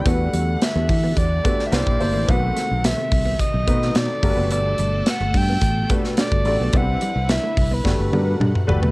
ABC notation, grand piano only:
X:1
M:4/4
L:1/8
Q:1/4=108
K:G
V:1 name="Grand piano"
[A,DFGB]4 z [A,DFGB] [_B,DEGc] [B,DEGc] | [^D,A,CFB]4 z [A,C^DFB]2 [A,=DFG_B=B]- | [A,DFG_B=B]3 z2 [A,DFGB]2 [A,DFGd] | [CDEGB]4 [A,DFGB] [A,DFG_B=B]2 [A,DFGB] |]